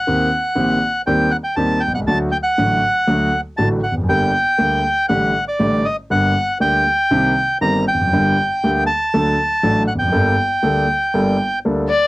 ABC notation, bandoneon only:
X:1
M:4/4
L:1/16
Q:1/4=119
K:Gm
V:1 name="Bandoneon"
^f8 g2 f g a2 g f | a2 g ^f8 z a2 f2 | g8 ^f3 d3 e2 | ^f4 g8 b2 g2- |
g6 a8 ^f g- | g12 z4 |]